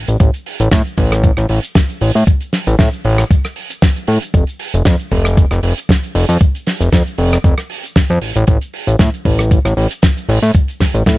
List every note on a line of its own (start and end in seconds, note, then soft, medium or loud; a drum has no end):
0.08 0.17 A1 loud
0.08 closed hi-hat medium
0.08 cabasa medium
0.20 0.30 A1 loud
0.20 kick loud
0.20 closed hi-hat medium
0.20 cabasa medium
0.34 closed hi-hat soft
0.34 cabasa medium
0.46 open hi-hat loud
0.60 0.69 A1 loud
0.60 closed hi-hat medium
0.60 cabasa medium
0.71 0.82 A2 loud
0.71 kick loud
0.71 snare loud
0.71 closed hi-hat medium
0.71 cabasa medium
0.85 closed hi-hat soft
0.85 cabasa soft
0.97 1.32 A1 loud
0.97 kick medium
0.97 open hi-hat loud
1.12 cross-stick medium
1.12 closed hi-hat medium
1.12 cabasa medium
1.23 kick loud
1.23 closed hi-hat medium
1.23 cabasa medium
1.37 1.46 A1 loud
1.37 cross-stick medium
1.37 closed hi-hat soft
1.37 cabasa soft
1.49 1.60 A1 medium
1.49 open hi-hat loud
1.63 closed hi-hat medium
1.63 cabasa medium
1.75 kick loud
1.75 snare loud
1.75 closed hi-hat medium
1.75 cabasa medium
1.89 closed hi-hat soft
1.89 cabasa medium
2.01 2.12 A1 medium
2.01 open hi-hat loud
2.15 2.24 A2 loud
2.15 open hi-hat medium
2.15 cabasa medium
2.27 kick loud
2.27 closed hi-hat medium
2.27 cabasa medium
2.41 closed hi-hat soft
2.41 cabasa soft
2.53 snare medium
2.53 open hi-hat medium
2.67 2.76 A1 loud
2.67 closed hi-hat medium
2.67 cabasa medium
2.79 2.89 A2 medium
2.79 kick loud
2.79 snare loud
2.79 closed hi-hat medium
2.79 cabasa medium
2.93 closed hi-hat soft
2.93 cabasa soft
3.05 3.24 A1 loud
3.05 open hi-hat medium
3.18 cross-stick medium
3.18 closed hi-hat medium
3.18 cabasa medium
3.31 kick loud
3.31 closed hi-hat medium
3.31 cabasa medium
3.44 cross-stick medium
3.44 closed hi-hat soft
3.44 cabasa soft
3.56 open hi-hat loud
3.70 closed hi-hat medium
3.70 cabasa medium
3.82 kick loud
3.82 snare loud
3.82 open hi-hat medium
3.82 cabasa medium
3.96 closed hi-hat soft
3.96 cabasa medium
4.07 4.18 A2 medium
4.07 open hi-hat loud
4.22 closed hi-hat medium
4.22 cabasa medium
4.34 4.44 F1 medium
4.34 kick loud
4.34 closed hi-hat medium
4.34 cabasa medium
4.47 closed hi-hat soft
4.47 cabasa medium
4.59 open hi-hat loud
4.74 4.83 F1 loud
4.74 closed hi-hat medium
4.74 cabasa medium
4.85 4.96 F2 loud
4.85 kick loud
4.85 snare loud
4.85 closed hi-hat medium
4.85 cabasa medium
4.99 closed hi-hat soft
4.99 cabasa soft
5.11 5.46 F1 loud
5.11 kick medium
5.11 open hi-hat loud
5.25 cross-stick medium
5.25 closed hi-hat medium
5.25 cabasa medium
5.37 kick loud
5.37 closed hi-hat medium
5.37 cabasa medium
5.51 5.60 F1 loud
5.51 cross-stick medium
5.51 closed hi-hat soft
5.51 cabasa soft
5.63 5.74 F1 medium
5.63 open hi-hat loud
5.78 closed hi-hat medium
5.78 cabasa medium
5.89 kick loud
5.89 snare loud
5.89 closed hi-hat medium
5.89 cabasa medium
6.03 closed hi-hat soft
6.03 cabasa soft
6.15 6.25 F1 medium
6.15 open hi-hat loud
6.29 6.38 F2 loud
6.29 open hi-hat medium
6.29 cabasa medium
6.41 kick loud
6.41 closed hi-hat medium
6.41 cabasa medium
6.55 closed hi-hat soft
6.55 cabasa medium
6.67 snare medium
6.67 open hi-hat loud
6.81 6.89 F1 loud
6.81 closed hi-hat medium
6.81 cabasa medium
6.92 7.03 F2 loud
6.92 kick loud
6.92 snare loud
6.92 closed hi-hat medium
6.92 cabasa medium
7.06 closed hi-hat soft
7.06 cabasa soft
7.18 7.38 F1 loud
7.18 open hi-hat loud
7.32 cross-stick medium
7.32 closed hi-hat medium
7.32 cabasa medium
7.44 7.55 F1 medium
7.44 kick loud
7.44 closed hi-hat medium
7.44 cabasa medium
7.58 cross-stick medium
7.58 closed hi-hat soft
7.58 cabasa medium
7.70 open hi-hat loud
7.84 closed hi-hat medium
7.84 cabasa medium
7.96 kick loud
7.96 snare loud
7.96 open hi-hat medium
7.96 cabasa medium
8.10 8.19 F2 loud
8.10 closed hi-hat soft
8.10 cabasa soft
8.22 8.33 A1 soft
8.22 open hi-hat loud
8.35 8.45 A1 loud
8.35 closed hi-hat medium
8.35 cabasa medium
8.47 8.58 A1 loud
8.47 kick loud
8.47 closed hi-hat medium
8.47 cabasa medium
8.61 closed hi-hat soft
8.61 cabasa medium
8.74 open hi-hat loud
8.87 8.96 A1 loud
8.87 closed hi-hat medium
8.87 cabasa medium
8.99 9.10 A2 loud
8.99 kick loud
8.99 snare loud
8.99 closed hi-hat medium
8.99 cabasa medium
9.14 closed hi-hat soft
9.14 cabasa soft
9.25 9.59 A1 loud
9.25 kick medium
9.25 open hi-hat loud
9.38 cross-stick medium
9.38 closed hi-hat medium
9.38 cabasa medium
9.51 kick loud
9.51 closed hi-hat medium
9.51 cabasa medium
9.65 9.74 A1 loud
9.65 cross-stick medium
9.65 closed hi-hat soft
9.65 cabasa medium
9.77 9.87 A1 medium
9.77 open hi-hat loud
9.91 closed hi-hat medium
9.91 cabasa medium
10.02 kick loud
10.02 snare loud
10.02 closed hi-hat medium
10.02 cabasa medium
10.17 closed hi-hat soft
10.17 cabasa medium
10.29 10.39 A1 medium
10.29 open hi-hat loud
10.42 10.51 A2 loud
10.42 open hi-hat medium
10.42 cabasa medium
10.54 kick loud
10.54 closed hi-hat medium
10.54 cabasa medium
10.68 closed hi-hat soft
10.68 cabasa medium
10.80 kick medium
10.80 snare medium
10.80 open hi-hat loud
10.94 11.03 A1 loud
10.94 closed hi-hat medium
10.94 cabasa medium
11.06 11.17 A2 medium
11.06 kick loud
11.06 snare loud
11.06 closed hi-hat medium
11.06 cabasa medium